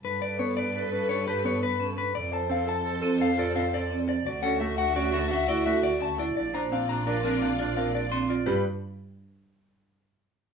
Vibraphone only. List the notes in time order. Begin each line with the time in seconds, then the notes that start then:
0.22 B4
0.75 A4
0.92 C#4
1.28 G4
1.80 C#4
2.33 C5
2.85 A4
3.03 C4
3.38 F4
3.91 C4
4.43 A4
4.96 F#4
5.13 C#4
5.49 E4
5.66 F#4
6.01 C#4
6.18 E4
6.54 C5
7.07 A#4
7.24 C4
7.59 F4
7.77 A#4
8.11 C4
8.29 F4
8.46 G4